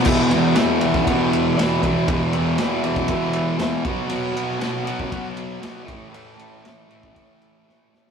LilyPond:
<<
  \new Staff \with { instrumentName = "Transistor combo organ" } { \time 4/4 \key e \minor \tempo 4 = 118 <g' b' e''>8 <g' b' g''>8 <g' b' e''>8 <g' b' e''>8 <g' b' fis''>8 <g' b' e''>8 <g' b' e''>8 <g' b' e''>8 | <g' b' dis''>8 <g' b' e''>8 <g' b' dis''>8 <g' b' dis''>8 <g' b' e''>8 <g' b' e''>8 <g' b' e''>8 <fis' b' dis''>8~ | <fis' b' dis''>8 <fis' b' dis''>8 <fis' b' fis''>8 <fis' b' fis''>8 <fis' b' fis''>8 <fis' b' dis''>8 <fis' b' dis''>8 <e' a' cis''>8~ | <e' a' cis''>8 <e' a' cis''>8 <e' a' cis''>8 <e' a' dis''>8 <e' a' cis''>8 <e' a' cis''>8 <e' a' b'>8 <e' a' cis''>8 | }
  \new Staff \with { instrumentName = "Distorted electric guitar" } { \clef bass \time 4/4 \key e \minor <e, b, e>8 <b, e>8 <e, b, e>8 <b, e>8 <e, b, e>4 <e, b, e>8 <b, e>8 | <e, b, e>8 <b, e>8 <e, b, e>8 <b, e>8 <e, b, e>4 <e, b, e>8 <b, fis b>8 | <b, fis b>8 <fis b>8 <b, fis b>8 <fis b>8 <b, fis b>4 <b, fis b>8 <a, e a>8 | <a, e a>8 <e a>8 <a, e a>8 <e a>8 <a, e a>4 <a, e a>8 <e a>8 | }
  \new DrumStaff \with { instrumentName = "Drums" } \drummode { \time 4/4 <cymc bd>8 cymr8 <cymr sn>8 cymr16 <bd sn>16 <bd cymr>8 cymr8 <cymr sn>8 <bd cymr>8 | <bd cymr>8 cymr8 <cymr sn>8 cymr16 bd16 <bd cymr>8 cymr8 <cymr sn>8 <bd cymr>8 | cymr8 cymr8 <cymr sn>8 cymr16 bd16 <bd cymr>8 cymr8 <cymr sn>8 <bd cymr>8 | cymr8 cymr8 <cymr sn>8 cymr16 bd16 <bd cymr>8 cymr8 sn8 sn16 sn16 | }
>>